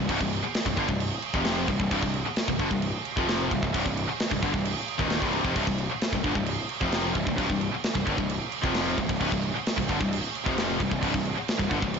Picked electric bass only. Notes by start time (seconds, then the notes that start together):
0.09 C1
0.21 C1
0.43 muted picked electric bass stroke
0.65 C1
0.77 G1
0.89 C1
1.34 F1
1.68 C1
1.80 C1
1.91 C1
2.02 C1
2.25 muted picked electric bass stroke
2.48 C1
2.59 G1
2.71 C1
3.17 F1
3.51 C1
3.63 C1
3.74 C1
3.86 C1
4.09 muted picked electric bass stroke
4.32 C1
4.42 G1
4.54 C1
4.99 D#1
5.22 C1
5.44 F1
5.56 C1
5.67 C1
5.90 muted picked electric bass stroke
6.12 C1
6.24 G1
6.36 C1
6.81 F1
7.15 C1
7.27 C1
7.38 C1
7.50 C1
7.71 muted picked electric bass stroke
7.95 C1
8.07 G1
8.18 C1
8.63 F1
8.98 C1
9.09 C1
9.21 C1
9.32 C1
9.54 muted picked electric bass stroke
9.77 C1
9.89 G1
10.01 C1
10.46 F1
10.80 C1
10.91 C1
11.03 C1
11.14 C1
11.37 muted picked electric bass stroke
11.59 C1
11.71 G1
11.83 C1